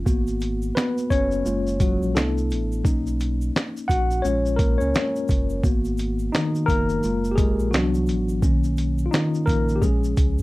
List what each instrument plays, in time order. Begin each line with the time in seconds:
0.05 sub bass G#1, tine electric piano A#3 B3 F#4, kick, shaker
0.27 shaker
0.40 closed hi-hat, shaker
0.42 shaker
0.62 shaker
0.75 tine electric piano B3 B4, finger snap, snare, shaker
0.98 shaker
1.10 sub bass F#1, tine electric piano C#4 C#5, kick, closed hi-hat, shaker
1.31 shaker
1.45 sub bass F#1, tine electric piano G#3 A#3 F4, shaker
1.67 shaker
1.80 tine electric piano F#3 F#4, kick, closed hi-hat, shaker
2.02 sub bass A#1, shaker
2.15 sub bass C2, tine electric piano A3 B3 D4 E4 A4, finger snap, snare, shaker
2.38 shaker
2.50 sub bass A1, closed hi-hat, shaker
2.52 shaker
2.72 shaker
2.84 sub bass B1, tine electric piano A#3 C#4 D#4, kick, shaker
3.06 shaker
3.20 closed hi-hat, shaker
3.41 shaker
3.56 finger snap, snare, shaker
3.77 shaker
3.88 sub bass A#1, tine electric piano F#4 F#5, kick, closed hi-hat, shaker
4.11 shaker
4.22 sub bass A#1, tine electric piano G#3 C#4 F4 C#5, shaker
4.46 shaker
4.56 tine electric piano A#3 A#4, kick, closed hi-hat, shaker
4.78 sub bass C#2, tine electric piano C#4 C#5, shaker
4.94 finger snap, snare, shaker
5.16 shaker
5.28 sub bass F#1, kick, closed hi-hat, shaker
5.31 shaker
5.49 shaker
5.63 sub bass G#1, tine electric piano A#3 B3 F#4, kick, shaker
5.84 shaker
5.97 closed hi-hat, shaker
5.99 shaker
6.19 shaker
6.32 tine electric piano D#3 D#4, finger snap, snare, shaker
6.55 shaker
6.66 sub bass F#1, tine electric piano A#3 A#4, kick, closed hi-hat, shaker
6.70 shaker
6.89 shaker
7.03 sub bass F#1, tine electric piano G#3 A#3 F4, shaker
7.24 shaker
7.31 tine electric piano G4
7.36 tine electric piano G#3 G#4, kick, closed hi-hat, shaker
7.59 sub bass A#1, shaker
7.71 sub bass C2, tine electric piano E3 F#3 B3 D4 F#4, snare, shaker
7.76 finger snap
7.94 shaker
8.06 sub bass A1, closed hi-hat, shaker
8.09 shaker
8.29 shaker
8.42 sub bass B1, tine electric piano D#3 A#3 C#4, kick, shaker
8.64 shaker
8.77 closed hi-hat, shaker
8.98 shaker
9.06 tine electric piano F4
9.11 tine electric piano D#3 D#4, snare, shaker
9.15 finger snap
9.34 shaker
9.46 sub bass A#1, tine electric piano A#3 A#4, kick, closed hi-hat, shaker
9.49 shaker
9.68 shaker
9.76 tine electric piano G4
9.82 sub bass A#1, tine electric piano F3 G#3 C#4 G#4, kick, shaker
10.04 shaker
10.17 sub bass C#2, kick, closed hi-hat, shaker
10.38 sub bass F2, shaker